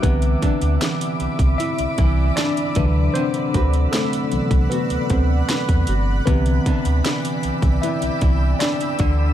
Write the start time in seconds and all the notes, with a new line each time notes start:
Already playing: G3 D4 F#4
0.02 C2 C3 D3 E3 B3 B4 D5 E5 B5 D6, kick, closed hi-hat
0.22 closed hi-hat
0.42 E3 B3 D4, kick, closed hi-hat
0.62 D2, closed hi-hat
0.81 E3, snare, closed hi-hat
1.01 closed hi-hat
1.20 C2, closed hi-hat
1.39 C2, kick, closed hi-hat
1.58 B3 E4 E5, closed hi-hat
1.78 C2, closed hi-hat
1.98 C2 E3, kick, closed hi-hat
2.36 D4 D5, snare, closed hi-hat
2.57 closed hi-hat
2.75 D2 C3 D3 E3 F#3 B4 F#5 B5 E6, kick, closed hi-hat
3.14 D3 C4 C5, closed hi-hat
3.34 closed hi-hat
3.54 D2 C4 F#4 B4, kick, closed hi-hat
3.73 closed hi-hat
3.92 A3 C4 A4, snare, closed hi-hat
4.13 closed hi-hat
4.32 C2 C3 E3 F#3 B3 F#6, closed hi-hat
4.51 C2, kick, closed hi-hat
4.70 B3 F#4 B4, closed hi-hat
4.90 D2, closed hi-hat
5.10 D2 C4, kick, closed hi-hat
5.49 B4, snare, closed hi-hat
5.69 E2, kick, closed hi-hat
5.87 G1 F#4, closed hi-hat
6.26 C2 C3 D3 E3 B3 B4 D5 G5 E6, kick, closed hi-hat
6.46 closed hi-hat
6.66 E3 B3 D4, kick, closed hi-hat
6.85 D2, closed hi-hat
7.05 E3, snare, closed hi-hat
7.25 closed hi-hat
7.43 C2, closed hi-hat
7.62 C2, kick, closed hi-hat
7.82 B3 E4 E5, closed hi-hat
8.02 C2, closed hi-hat
8.21 C2 E3, kick, closed hi-hat
8.59 D4 D5, snare, closed hi-hat
8.81 closed hi-hat
8.99 D2 D3, kick, closed hi-hat